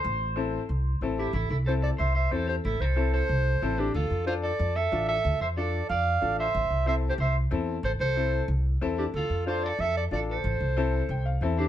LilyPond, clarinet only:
\new Staff \with { instrumentName = "Clarinet" } { \time 4/4 \key a \minor \tempo 4 = 184 r2. r8 g'8 | a'8 a'8 c''8 d''8 e''8 e''8 c''8 c''8 | a'8 c''4 c''2 g'8 | a'4 c''8 d''4 e''4 e''8~ |
e''8 e''8 d''4 f''4. e''8~ | e''4 \tuplet 3/2 { e''8. r16 c''8 } e''8 r4. | c''8 c''4. r4. g'8 | a'4 c''8 d''8 e''8 d''8 d''8 c''8~ |
c''2. r8 g'8 | }